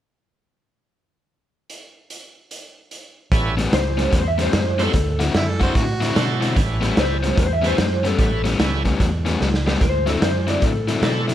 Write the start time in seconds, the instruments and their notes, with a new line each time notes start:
1.70 closed hi-hat
2.10 closed hi-hat
2.51 closed hi-hat
2.91 closed hi-hat
3.32 fingered electric bass A1, tonewheel organ G3 B3 C#4 E4 A4, kick, snare, closed hi-hat
3.57 overdriven electric guitar A2 G3 B3 C#4, snare, closed hi-hat
3.72 fingered electric bass C#2, clean electric guitar C5, snare, closed hi-hat
3.97 overdriven electric guitar A2 G3 B3 C#4, snare, closed hi-hat
4.12 fingered electric bass E2, clean electric guitar C5, kick, snare, closed hi-hat
4.28 clean electric guitar E5
4.38 overdriven electric guitar A2 G3 B3 C#4, clean electric guitar C5, snare, closed hi-hat
4.53 fingered electric bass F#2, snare, closed hi-hat
4.78 overdriven electric guitar A2 G3 B3 C#4, tonewheel organ F#3 C4 D4 E4 C5, snare, closed hi-hat
4.83 clean electric guitar A4
4.93 fingered electric bass D2, kick, snare, closed hi-hat
5.19 overdriven electric guitar D3 C4 E4 F#4, snare, closed hi-hat
5.34 fingered electric bass F#2, harmonica E4, snare, closed hi-hat
5.48 harmonica A4
5.60 overdriven electric guitar D3 C4 E4 F#4, tonewheel organ F#3 C4 D4 E4 A4, harmonica C5, kick, snare, closed hi-hat
5.75 fingered electric bass A2, harmonica F#4, kick, snare, closed hi-hat
6.01 overdriven electric guitar D3 C4 E4 F#4, snare, closed hi-hat
6.15 fingered electric bass B2, tonewheel organ F#3 D4 E4 A4 C5, snare, closed hi-hat
6.41 overdriven electric guitar D3 C4 E4 F#4, snare, closed hi-hat
6.55 fingered electric bass A1, tonewheel organ G3 B3 C#4 E4 A4, kick, snare, closed hi-hat
6.81 overdriven electric guitar A2 G3 B3 C#4, snare, closed hi-hat
6.97 fingered electric bass C#2, clean electric guitar C5, snare, closed hi-hat
7.23 overdriven electric guitar A2 G3 B3 C#4, snare, closed hi-hat
7.38 fingered electric bass E2, clean electric guitar C5, kick, snare, closed hi-hat
7.53 clean electric guitar E5
7.62 overdriven electric guitar A2 G3 B3 C#4, tonewheel organ G3 B3 C#4 E4 A4, snare, closed hi-hat
7.66 clean electric guitar C5
7.78 fingered electric bass F#2, snare, closed hi-hat
8.03 overdriven electric guitar A2 G3 B3 C#4, clean electric guitar A4, snare, closed hi-hat
8.18 fingered electric bass A1, tonewheel organ G3 B3 C#4 E4 A4, kick, snare, closed hi-hat
8.44 overdriven electric guitar A2 G3 B3 C#4, snare, closed hi-hat
8.59 fingered electric bass C#2, tonewheel organ G3 B3 C#4 E4 A4, snare, closed hi-hat
8.85 overdriven electric guitar A2 G3 B3 C#4, kick, snare, closed hi-hat
9.00 fingered electric bass E2, kick, snare, closed hi-hat
9.25 overdriven electric guitar A2 G3 B3 C#4, snare, closed hi-hat
9.41 fingered electric bass C#2, snare
9.54 snare
9.66 overdriven electric guitar A2 G3 B3 C#4, snare
9.81 fingered electric bass D2, clean electric guitar C5, kick, snare, closed hi-hat
10.06 overdriven electric guitar D3 F#3 C4 E4, clean electric guitar A4, snare, closed hi-hat
10.21 fingered electric bass F#2, clean electric guitar C5, snare, closed hi-hat
10.47 overdriven electric guitar D3 F#3 C4 E4, clean electric guitar D5, snare, closed hi-hat
10.62 fingered electric bass A2, clean electric guitar A4, kick, snare, closed hi-hat
10.88 overdriven electric guitar D3 F#3 C4 E4, clean electric guitar A4, snare, closed hi-hat
11.01 fingered electric bass B2, tonewheel organ F#3 C4 D4 E4 A4, snare, closed hi-hat
11.28 overdriven electric guitar D3 F#3 C4 E4, snare, closed hi-hat